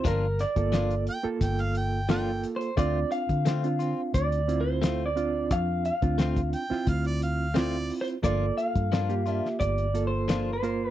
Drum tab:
HH |x-xxxxx-xxx-x-xx|x-xxxxx-xxx-x-x-|x-xxxxx-xxx-x-ox|x-xxxxx-xxx-x-x-|
SD |--o-o-------o---|----o-------o---|----o--o----o---|----o--o----o---|
BD |o--o----o-------|o--o----o-------|o--o-o--o-------|o--o----o-------|